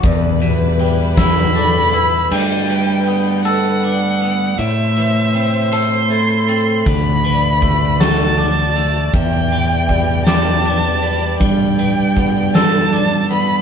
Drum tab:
CC |------|x-----|------|------|
HH |xxxxxx|-xxxxx|xxxxxx|xxxxxx|
SD |---o--|------|------|---o--|
BD |o--o--|------|------|o-o---|

CC |------|------|
HH |xxxxxx|xxxxxx|
SD |---o--|---o--|
BD |o-o---|o-o---|